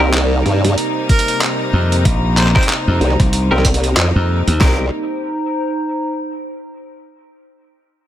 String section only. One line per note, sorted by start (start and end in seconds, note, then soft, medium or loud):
0.00 4.57 C3 medium
0.00 4.57 G3 medium
0.00 4.57 A#3 medium
0.00 4.57 D#4 loud
4.60 4.90 C3 medium
4.60 4.90 G3 medium
4.60 4.90 A#3 medium
4.60 4.90 D#4 medium